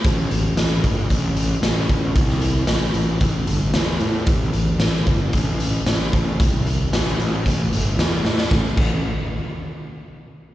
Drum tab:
CC |----------------|----------------|----------------|----------------|
HH |x-x-x-x-x-x-x-x-|x-x-x-x-x-x-x-x-|x-x-x-x-x-x-x-x-|x-x-x-x-x-x-x---|
TB |----x-------x---|----x-------x---|----x-------x---|----x-------x---|
SD |----o-------o---|-o--o-------o---|----o-------o---|----oo------o-oo|
BD |o-----o-o-----o-|o-------o-------|o-----o-o-----o-|o-------o-------|

CC |--x-------------|
HH |----------------|
TB |----------------|
SD |o---------------|
BD |o-o-------------|